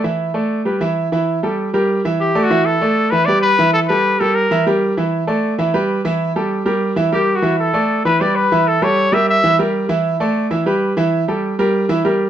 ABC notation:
X:1
M:4/4
L:1/16
Q:1/4=195
K:Edor
V:1 name="Trumpet"
z16 | z12 G3 F- | F2 A6 B2 d2 B4 | A2 B4 A2 _B4 z4 |
z16 | z12 G3 F- | F2 A6 B2 d2 B4 | A2 c4 e2 e4 z4 |
z16 | z16 |]
V:2 name="Grand piano"
[E,Ee]4 [A,Ad]4 [G,GB]2 [E,Ee]4 [E,Ee]2- | [E,Ee]2 [G,GA]4 [G,G_B]4 [E,Ee]4 [A,Ad]2 | [E,Ee]4 [A,Ad]4 [E,Ee]2 [G,GB]4 [E,Ee]2- | [E,Ee]2 [G,GA]4 [G,G_B]4 [E,Ee]2 [G,GB]4 |
[E,Ee]4 [A,Ad]4 [E,Ee]2 [G,GB]4 [E,Ee]2- | [E,Ee]2 [G,GA]4 [G,G_B]4 [E,Ee]2 [G,GB]4 | [E,Ee]4 [A,Ad]4 [E,Ee]2 [G,GB]4 [E,Ee]2- | [E,Ee]2 [G,GA]4 [G,G_B]4 [E,Ee]2 [G,GB]4 |
[E,Ee]4 [A,Ad]4 [E,Ee]2 [G,GB]4 [E,Ee]2- | [E,Ee]2 [G,GA]4 [G,G_B]4 [E,Ee]2 [G,GB]4 |]